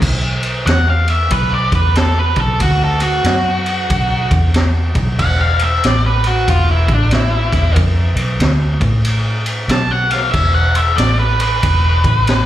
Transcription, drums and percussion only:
0.02 kick loud
0.02 crash loud
0.43 ride medium
0.67 snare loud
0.67 ride medium
1.08 ride medium
1.30 kick loud
1.30 ride medium
1.72 kick loud
1.72 ride medium
1.95 snare loud
1.95 ride medium
2.36 kick loud
2.36 ride medium
2.60 kick loud
2.60 ride medium
3.00 ride medium
3.24 snare loud
3.24 ride medium
3.66 ride medium
3.90 kick loud
3.90 ride loud
4.31 kick loud
4.31 ride medium
4.54 snare loud
4.54 ride medium
4.95 kick loud
4.95 ride medium
5.19 kick loud
5.19 crash loud
5.59 ride medium
5.84 snare loud
5.84 ride medium
6.24 ride medium
6.48 kick loud
6.48 ride medium
6.88 kick loud
6.88 ride medium
7.11 snare loud
7.11 ride medium
7.53 kick loud
7.53 snare soft
7.53 ride medium
7.76 kick loud
7.76 ride medium
8.17 ride medium
8.40 snare loud
8.40 ride medium
8.81 kick loud
8.81 ride medium
9.05 ride medium
9.46 ride medium
9.69 snare loud
9.69 ride medium
10.11 snare soft
10.11 ride medium
10.34 kick loud
10.34 crash medium
10.75 ride medium
10.98 snare loud
10.98 ride loud
11.40 ride medium
11.63 kick medium
11.63 ride loud
12.04 kick loud
12.04 ride medium
12.27 snare medium
12.27 ride medium

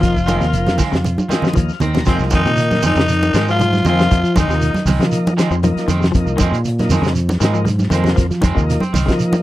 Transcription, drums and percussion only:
0.02 kick medium
0.02 snare soft
0.02 closed hi-hat medium
0.02 high conga soft
0.02 shekere medium
0.16 kick medium
0.16 shekere soft
0.28 snare soft
0.28 closed hi-hat medium
0.28 high conga medium
0.28 shekere medium
0.41 snare soft
0.41 closed hi-hat soft
0.41 shekere soft
0.53 closed hi-hat medium
0.53 high conga soft
0.53 shekere medium
0.67 snare medium
0.67 closed hi-hat soft
0.67 high conga medium
0.67 shekere soft
0.78 kick medium
0.78 open hi-hat medium
0.78 low conga medium
0.78 shekere medium
0.93 snare medium
0.93 closed hi-hat soft
0.93 shekere soft
1.04 closed hi-hat medium
1.04 high conga medium
1.04 shekere loud
1.18 high conga medium
1.18 shekere soft
1.29 closed hi-hat medium
1.29 high conga medium
1.29 shekere medium
1.33 snare medium
1.42 low conga medium
1.42 shekere soft
1.47 snare medium
1.53 kick medium
1.53 low conga medium
1.53 shekere medium
1.58 closed hi-hat medium
1.69 snare soft
1.69 shekere soft
1.80 closed hi-hat medium
1.80 low conga loud
1.80 shekere medium
1.94 snare medium
1.94 closed hi-hat soft
1.94 low conga medium
1.94 shekere soft
2.05 kick medium
2.05 closed hi-hat medium
2.05 high conga soft
2.05 shekere medium
2.19 snare soft
2.19 shekere soft
2.31 kick medium
2.31 closed hi-hat medium
2.31 high conga medium
2.31 shekere medium
2.45 closed hi-hat soft
2.45 shekere soft
2.57 closed hi-hat medium
2.57 high conga soft
2.57 shekere loud
2.71 snare soft
2.71 closed hi-hat soft
2.71 high conga medium
2.71 shekere soft
2.82 open hi-hat medium
2.82 low conga medium
2.82 shekere medium
2.96 snare medium
2.96 closed hi-hat soft
2.96 shekere soft
3.08 closed hi-hat medium
3.08 shekere medium
3.22 closed hi-hat soft
3.22 high conga medium
3.22 shekere soft
3.34 snare medium
3.34 closed hi-hat medium
3.34 shekere medium
3.48 shekere soft
3.60 closed hi-hat medium
3.60 high conga medium
3.60 shekere medium
3.73 snare soft
3.73 high conga medium
3.73 shekere soft
3.85 closed hi-hat medium
3.85 low conga medium
3.85 shekere medium
3.99 snare medium
3.99 closed hi-hat soft
3.99 shekere soft
4.10 kick loud
4.10 closed hi-hat medium
4.10 high conga soft
4.10 shekere medium
4.25 closed hi-hat soft
4.25 shekere soft
4.36 kick medium
4.36 snare soft
4.36 closed hi-hat medium
4.36 high conga loud
4.36 shekere medium
4.50 snare soft
4.50 shekere soft
4.62 closed hi-hat medium
4.62 high conga soft
4.62 shekere medium
4.74 snare soft
4.74 closed hi-hat soft
4.74 high conga medium
4.74 shekere soft
4.86 open hi-hat medium
4.86 high conga medium
4.86 low conga medium
4.86 shekere medium
5.01 snare medium
5.01 closed hi-hat soft
5.01 shekere soft
5.12 closed hi-hat medium
5.12 high conga soft
5.12 shekere medium
5.27 closed hi-hat soft
5.27 high conga medium
5.27 shekere soft
5.38 snare medium
5.38 closed hi-hat medium
5.38 shekere medium
5.51 shekere soft
5.63 closed hi-hat medium
5.63 high conga medium
5.63 shekere medium
5.77 snare soft
5.77 closed hi-hat soft
5.77 shekere soft
5.88 closed hi-hat medium
5.88 low conga medium
5.88 shekere medium
6.02 snare medium
6.02 shekere soft
6.14 kick loud
6.14 closed hi-hat medium
6.14 shekere loud
6.27 shekere soft
6.38 kick medium
6.38 closed hi-hat medium
6.38 high conga loud
6.38 shekere medium
6.54 closed hi-hat soft
6.54 shekere soft
6.65 closed hi-hat medium
6.65 high conga soft
6.65 shekere medium
6.79 snare soft
6.79 closed hi-hat soft
6.79 high conga medium
6.79 shekere soft
6.90 open hi-hat medium
6.90 high conga medium
6.90 low conga medium
6.90 shekere medium
7.04 snare medium
7.04 closed hi-hat soft
7.04 shekere soft
7.15 closed hi-hat medium
7.15 high conga soft
7.15 shekere medium
7.29 snare soft
7.29 closed hi-hat soft
7.29 high conga loud
7.29 shekere soft
7.41 snare medium
7.41 closed hi-hat medium
7.41 shekere medium
7.54 shekere soft
7.65 closed hi-hat medium
7.65 high conga medium
7.65 shekere medium
7.79 snare soft
7.79 high conga medium
7.79 shekere soft
7.90 closed hi-hat medium
7.90 low conga medium
7.90 shekere medium
8.04 snare medium
8.04 closed hi-hat soft
8.04 low conga medium
8.04 shekere soft
8.16 kick medium
8.16 snare soft
8.16 closed hi-hat medium
8.16 high conga soft
8.16 shekere medium
8.31 snare soft
8.31 closed hi-hat soft
8.31 shekere soft
8.42 kick medium
8.42 closed hi-hat medium
8.42 high conga loud
8.42 shekere medium
8.57 kick medium
8.57 shekere soft
8.68 snare soft
8.68 closed hi-hat medium
8.68 high conga soft
8.68 shekere loud
8.80 closed hi-hat soft
8.80 high conga medium
8.80 shekere soft
8.94 open hi-hat medium
8.94 high conga medium
8.94 low conga medium
8.94 shekere medium
9.08 kick medium
9.08 snare medium
9.08 closed hi-hat soft
9.08 shekere soft
9.20 closed hi-hat medium
9.20 high conga soft
9.20 shekere loud
9.33 closed hi-hat soft
9.33 high conga medium
9.33 shekere soft

